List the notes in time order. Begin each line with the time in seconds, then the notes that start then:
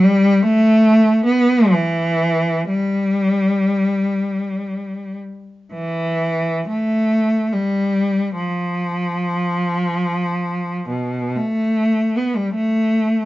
0.04 G3
0.42 A3
1.25 B3
1.70 E3
2.68 G3
5.73 E3
6.68 A3
7.53 G3
8.36 F3
10.88 B2
11.35 A3
12.17 B3
12.36 G3
12.54 A3